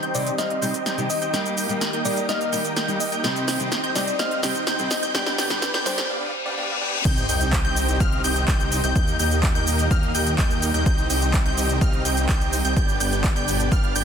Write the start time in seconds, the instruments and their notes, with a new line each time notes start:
Already playing: analog synth pad D#3 G3 C4 G4 C5, riser
0.03 supersaw synth C4 D#4 G4 D#5 G5, digital synth lead G6, closed hi-hat
0.14 steel-string acoustic guitar C3 G3 C4 D#4 G4, synth pluck D5, open hi-hat, shaker
0.27 closed hi-hat, shaker
0.38 supersaw synth C4 D#4 G4 D#5 F5, synth pluck D#5, digital synth lead F6, snare, closed hi-hat, shaker
0.50 closed hi-hat
0.61 steel-string acoustic guitar C3 G3 C4 D#4 G4, supersaw synth C4 D#4 G4 D#5 G5, digital synth lead G6, open hi-hat, shaker
0.74 closed hi-hat, shaker
0.86 supersaw synth C4 D#4 G4 D#5 G5, digital synth lead G6, snare, closed hi-hat, shaker
0.97 steel-string acoustic guitar C3 G3 C4 D#4 G4, closed hi-hat, shaker
1.10 synth pluck D#5, open hi-hat, shaker
1.22 supersaw synth C4 D#4 G4 D#5 G5, digital synth lead G6, closed hi-hat, shaker
1.33 steel-string acoustic guitar G3 A#3 D#4 G4, analog synth pad G3 A#3 A#4, supersaw synth A#3 D#4 G4 D#5 G5, digital synth lead G6, snare, closed hi-hat, shaker
1.46 closed hi-hat, shaker
1.57 supersaw synth A#3 D#4 G4 D#5 G5, digital synth lead G6, open hi-hat, shaker
1.69 steel-string acoustic guitar G3 A#3 D#4 G4, closed hi-hat, shaker
1.81 snare, closed hi-hat, shaker
1.93 supersaw synth A#3 D#4 G4 D#5 G5, digital synth lead G6, closed hi-hat
2.04 steel-string acoustic guitar G3 A#3 D#4 G4, synth pluck D5, open hi-hat, shaker
2.17 closed hi-hat, shaker
2.29 supersaw synth A#3 D#4 G4 D#5 F5, synth pluck D#5, digital synth lead F6, snare, closed hi-hat, shaker
2.41 closed hi-hat, shaker
2.52 steel-string acoustic guitar G3 A#3 D#4 G4, supersaw synth A#3 D#4 G4 D#5 G5, digital synth lead G6, open hi-hat, shaker
2.65 closed hi-hat, shaker
2.76 supersaw synth A#3 D#4 G4 D#5 G5, digital synth lead G6, snare, closed hi-hat, shaker
2.88 steel-string acoustic guitar G3 A#3 D#4 G4, closed hi-hat, shaker
3.00 synth pluck D#5, open hi-hat, shaker
3.12 supersaw synth A#3 D#4 G4 D#5 G5, digital synth lead G6, closed hi-hat, shaker
3.23 steel-string acoustic guitar C3 G3 C4 D#4 G4, analog synth pad C4 C5, supersaw synth C4 D#4 G4 D#5 G5, digital synth lead G6, snare, closed hi-hat, shaker
3.36 closed hi-hat, shaker
3.48 supersaw synth C4 D#4 G4 D#5 G5, digital synth lead G6, snare, open hi-hat, shaker
3.59 steel-string acoustic guitar C3 G3 C4 D#4 G4, closed hi-hat, shaker
3.72 snare, closed hi-hat, shaker
3.84 supersaw synth C4 D#4 G4 D#5 G5, digital synth lead G6, closed hi-hat
3.95 steel-string acoustic guitar C3 G3 C4 D#4 G4, synth pluck D5, snare, open hi-hat, shaker
4.07 closed hi-hat, shaker
4.19 supersaw synth C4 D#4 G4 D#5 F5, synth pluck D#5, digital synth lead F6, snare, closed hi-hat, shaker
4.31 closed hi-hat
4.42 steel-string acoustic guitar C3 G3 C4 D#4 G4, supersaw synth C4 D#4 G4 D#5 G5, digital synth lead G6, snare, open hi-hat, shaker
4.55 closed hi-hat, shaker
4.67 supersaw synth C4 D#4 G4 D#5 G5, digital synth lead G6, snare, closed hi-hat, shaker
4.78 steel-string acoustic guitar C3 G3 C4 D#4 G4, closed hi-hat, shaker
4.91 synth pluck D#5, snare, open hi-hat, shaker
5.03 supersaw synth C4 D#4 G4 D#5 G5, digital synth lead G6, closed hi-hat, shaker
5.14 steel-string acoustic guitar G2 G3 B3 D4 G4, analog synth pad D3 B3 B4, supersaw synth B3 D4 G4 D5 G5, digital synth lead G6, snare, closed hi-hat, shaker
5.26 snare, closed hi-hat, shaker
5.38 supersaw synth B3 D4 G4 D5 G5, digital synth lead G6, snare, open hi-hat, shaker
5.49 steel-string acoustic guitar G2 G3 B3 D4 G4, snare, closed hi-hat, shaker
5.62 snare, closed hi-hat, shaker
5.74 supersaw synth B3 D4 G4 D5 G5, digital synth lead G6, snare, closed hi-hat
5.85 steel-string acoustic guitar G2 G3 B3 D4 G4, synth pluck C5, snare, open hi-hat, shaker
5.98 snare, closed hi-hat, shaker
6.10 supersaw synth B3 D4 G4 D5 F5, reverse cymbal
6.46 supersaw synth B3 D4 G4 D5 F5
6.57 supersaw synth B3 D4 G4 D5 F5
6.81 supersaw synth B3 D4 G4 D5 G5
7.05 detuned saw bass C2, analog synth pad C3 D#3 G3 D#4 G4, supersaw synth C4 D#4 G4 D#5 G5, digital synth lead G6, kick, closed hi-hat, crash, sub drop, shaker
7.17 closed hi-hat, shaker
7.29 detuned saw bass C2, supersaw synth C4 D#4 G4 D#5 G5, digital synth lead G6, open hi-hat, shaker
7.41 closed hi-hat, shaker
7.53 kick, clap, closed hi-hat, shaker
7.65 detuned saw bass C2, supersaw synth C4 D#4 G4 D#5 G5, digital synth lead G6, closed hi-hat
7.77 open hi-hat, shaker
7.88 closed hi-hat, shaker
8.00 detuned saw bass C2, supersaw synth C4 D#4 G4 D#5 F5, digital synth lead F6, kick, closed hi-hat, shaker
8.12 closed hi-hat
8.24 detuned saw bass C2, supersaw synth C4 D#4 G4 D#5 G5, digital synth lead G6, open hi-hat, shaker
8.36 closed hi-hat, shaker
8.48 detuned saw bass C2, supersaw synth C4 D#4 G4 D#5 G5, digital synth lead G6, kick, clap, closed hi-hat, shaker
8.60 closed hi-hat, shaker
8.72 open hi-hat, shaker
8.84 detuned saw bass C2, supersaw synth C4 D#4 G4 D#5 G5, digital synth lead G6, closed hi-hat, shaker
8.96 detuned saw bass D#2, analog synth pad A#2 G4, supersaw synth A#3 D#4 G4 D#5 G5, digital synth lead G6, kick, closed hi-hat, shaker
9.08 closed hi-hat, shaker
9.19 detuned saw bass D#2, supersaw synth A#3 D#4 G4 D#5 G5, digital synth lead G6, open hi-hat, shaker
9.31 closed hi-hat, shaker
9.43 kick, clap, closed hi-hat, shaker
9.55 detuned saw bass D#2, supersaw synth A#3 D#4 G4 D#5 G5, digital synth lead G6, closed hi-hat, shaker
9.67 open hi-hat, shaker
9.79 closed hi-hat, shaker
9.91 detuned saw bass D#2, supersaw synth A#3 D#4 G4 D#5 F5, digital synth lead F6, kick, closed hi-hat, shaker
10.03 closed hi-hat
10.15 detuned saw bass D#2, supersaw synth A#3 D#4 G4 D#5 G5, digital synth lead G6, open hi-hat, shaker
10.27 closed hi-hat, shaker
10.38 detuned saw bass D#2, supersaw synth A#3 D#4 G4 D#5 G5, digital synth lead G6, kick, clap, closed hi-hat, shaker
10.50 closed hi-hat, shaker
10.62 open hi-hat, shaker
10.74 detuned saw bass D#2, supersaw synth A#3 D#4 G4 D#5 G5, digital synth lead G6, closed hi-hat, shaker
10.86 detuned saw bass C2, analog synth pad C3, supersaw synth C4 D#4 G4 D#5 G5, digital synth lead G6, kick, closed hi-hat, shaker
10.98 closed hi-hat, shaker
11.10 detuned saw bass C2, supersaw synth C4 D#4 G4 D#5 G5, digital synth lead G6, open hi-hat, shaker
11.22 closed hi-hat, shaker
11.34 kick, clap, closed hi-hat, shaker
11.46 detuned saw bass C2, supersaw synth C4 D#4 G4 D#5 G5, digital synth lead G6, closed hi-hat
11.58 open hi-hat, shaker
11.69 closed hi-hat, shaker
11.81 detuned saw bass C2, supersaw synth C4 D#4 G4 D#5 F5, digital synth lead F6, kick, closed hi-hat, shaker
11.93 closed hi-hat
12.05 detuned saw bass C2, supersaw synth C4 D#4 G4 D#5 G5, digital synth lead G6, open hi-hat, shaker
12.17 closed hi-hat, shaker
12.29 detuned saw bass C2, supersaw synth C4 D#4 G4 D#5 G5, digital synth lead G6, kick, clap, closed hi-hat, shaker
12.41 closed hi-hat, shaker
12.53 open hi-hat, shaker
12.65 detuned saw bass C2, supersaw synth C4 D#4 G4 D#5 G5, digital synth lead G6, closed hi-hat, shaker
12.76 detuned saw bass G1, analog synth pad B2 D3 D4, supersaw synth B3 D4 G4 D5 G5, digital synth lead G6, kick, closed hi-hat, shaker
12.88 closed hi-hat, shaker
13.00 detuned saw bass G1, supersaw synth B3 D4 G4 D5 G5, digital synth lead G6, open hi-hat, shaker
13.12 closed hi-hat, shaker
13.24 kick, clap, closed hi-hat, shaker
13.36 detuned saw bass G1, supersaw synth B3 D4 G4 D5 G5, digital synth lead G6, closed hi-hat, shaker
13.48 open hi-hat, shaker
13.60 closed hi-hat, shaker
13.72 detuned saw bass G1, supersaw synth B3 D4 G4 D5 F5, digital synth lead F6, kick, closed hi-hat, shaker
13.84 closed hi-hat
13.95 detuned saw bass G1, supersaw synth B3 D4 G4 D5 G5, digital synth lead G6, open hi-hat, shaker